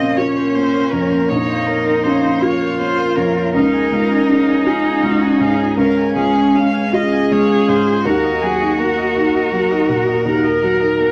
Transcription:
Already playing: felt piano A#1 C#3 A#3, ambient pad A#3 F4 A#4, cello C4, viola C5, violin D#5
0.17 cello C#4, felt piano F4, vibraphone A#4, violin C#5, viola C#5
0.36 viola C5
0.54 felt piano A#3, violin C5, viola C#5, vibraphone C#5
0.73 vibraphone A#4, viola C5
0.92 felt piano F2, violin A#4, viola C#5, vibraphone A#5
1.10 viola C5, vibraphone C#5
1.29 felt piano A#1, cello D#4, vibraphone A#4, violin C#5, viola C#5
1.48 viola C5, vibraphone F5
1.67 felt piano A#3, violin A#4, viola C#5, vibraphone C#5
1.86 vibraphone A#4, viola C5
2.04 felt piano C#4, violin C5, viola C#5, vibraphone F5
2.23 viola C5, vibraphone F5
2.41 cello F4, felt piano F4, vibraphone A#4, viola C#5, violin C#5
2.59 viola C5
2.79 felt piano A#3, violin C5, vibraphone C#5, viola C#5
2.97 vibraphone A#4, viola C5
3.16 felt piano F2, violin A#4, viola C#5, vibraphone A#5
3.35 viola C5, vibraphone C#5
3.53 felt piano C#2, ambient pad G#3 C#4 F5, vibraphone C#4, cello D#4, violin A#4, viola F5
3.73 vibraphone G#4, viola G#5
3.92 felt piano G#3, vibraphone F4, viola F5
4.11 vibraphone C#4, viola G#5
4.29 felt piano C#4, vibraphone G#4, viola F5
4.48 vibraphone G#4, viola G#5
4.66 vibraphone C#4, felt piano F4, violin G#4, viola F5
4.84 viola G#5
5.03 felt piano G#3, vibraphone F4, violin F#4, viola F5
5.21 vibraphone C#4, viola G#5
5.40 felt piano G#2, violin G#4, vibraphone C#5, viola F5
5.59 vibraphone F4, viola G#5
5.76 felt piano C#2, vibraphone C#4, cello C#4, violin A#4, viola F5
5.97 vibraphone G#4, viola G#5
6.16 felt piano G#3, vibraphone F4, violin G#4, viola F5
6.35 vibraphone C#4, viola G#5
6.54 felt piano C#4, vibraphone G#4, viola F5, violin F5
6.74 vibraphone G#4, viola G#5
6.92 vibraphone C#4, felt piano F4, cello G#4, violin D#5, viola F5
7.12 viola G#5
7.31 felt piano G#3, vibraphone F4, violin C#5, viola F5
7.49 vibraphone C#4, viola G#5
7.67 felt piano G#2, violin C5, vibraphone C#5, viola F5
7.86 vibraphone F4, viola G#5
8.04 felt piano D#2, ambient pad A#3 F#4 A#4, vibraphone D#4, cello F#4, violin A#4, viola F#5
8.23 vibraphone A#4, viola D#5
8.41 felt piano F#3, vibraphone F#4, violin G#4, viola F#5
8.60 vibraphone D#4, viola D#5
8.79 felt piano A#3, violin A#4, vibraphone A#4, viola F#5
8.97 viola D#5
9.15 vibraphone D#4, felt piano F#4, viola F#5
9.34 viola D#5
9.52 felt piano F#3, vibraphone F#4, viola F#5
9.71 vibraphone D#4, viola D#5
9.88 felt piano A#2, viola F#5
10.07 vibraphone F#4, viola D#5
10.25 felt piano D#2, vibraphone D#4, cello A#4, viola F#5
10.44 vibraphone A#4, viola D#5
10.62 felt piano F#3, vibraphone F#4, viola F#5
10.80 vibraphone D#4, viola D#5
10.99 felt piano A#3, vibraphone A#4, viola F#5

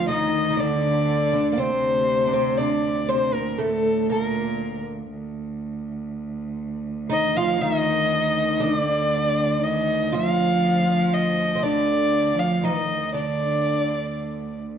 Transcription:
Already playing: cello D2
0.08 cello section D#3, oud D#4, violin D#5
0.50 oud D#4
0.57 cello section D3, oud D4, violin D5
1.33 oud D4
1.52 oud A#3, violin D5
1.57 cello section C3, oud C4, violin C5
2.27 oud D4
2.33 oud C4
2.58 oud D4, violin D5
3.08 cello section C3, oud C4, violin C5
3.34 cello section A#2, violin A#4
3.58 cello section A2, oud A3, violin A4
4.10 cello section A#2, oud A#3, violin A#4
5.09 cello D2
7.09 cello section D#3, oud D#4, violin D#5
7.35 cello section F3, oud F4, violin F5
7.61 cello section D#3, oud D#4, violin D#5
8.60 cello section D#3, oud D4, violin D5
8.72 cello section D3
9.61 cello section D#3, violin D#5
10.11 cello section F3, oud F4, violin F5
11.14 violin D#5
11.55 oud C4
11.62 cello section D3, oud D4, violin D5
12.36 cello section F3, violin F5
12.53 violin F5
12.63 cello section D#3, oud D#4, violin D#5
13.12 cello section D3, oud D4, violin D5

